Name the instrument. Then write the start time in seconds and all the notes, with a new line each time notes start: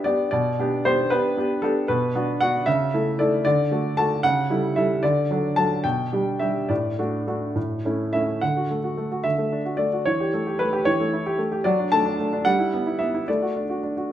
grand piano
0.04 B3 D4 G4 D5
0.31 B2 D5
0.59 B3 D4 G4
0.85 B3 D4 G4 C5
1.10 B3 D4 G4 B4
1.37 B3 D4 G4
1.62 B3 D4 G4 A4
1.88 B2 B4
2.15 B3 D4 F#4
2.41 B3 D4 F#4 F#5
2.66 C#3 E5
2.94 A3 E4 A4
3.19 A3 E4 A4 D5
3.45 D3 D5
3.71 A3 F#4 A4
3.97 A3 F#4 A4 A5
4.23 C#3 F#5
4.50 G3 E4 A4
4.76 G3 E4 A4 E5
5.03 D3 D5
5.31 F#3 D4 A4
5.56 F#3 D4 A4 A5
5.84 B2 G5
6.13 G3 D4 G4
6.39 G3 D4 G4 E5
6.69 A2 D5
6.99 A3 D4 F#4
7.27 A3 D4 F#4
7.56 A2
7.85 A3 C#4 E4
8.13 A3 C#4 E4 E5
8.41 D3 F#5
8.57 F#4
8.71 A3
8.84 F#4
8.97 A3
9.12 F#4
9.24 D3 E5
9.38 A3
9.52 D4
9.65 F#4
9.77 A3 D5
9.93 F#4
10.06 E3 C#5
10.20 G4
10.34 A3
10.47 G4
10.59 A3 B4
10.73 G4
10.85 E3 C#5
11.00 A3
11.13 E4
11.26 G4
11.39 A3
11.52 G4
11.64 F#3 D5
11.79 D4
11.92 A3 A5
12.05 D4
12.19 A3
12.33 D4
12.45 G3 F#5
12.59 E4
12.74 B3
12.87 E4
12.99 B3 E5
13.14 E4
13.28 A3 D5
13.42 F#4
13.56 D4
13.70 F#4
13.83 D4
13.97 F#4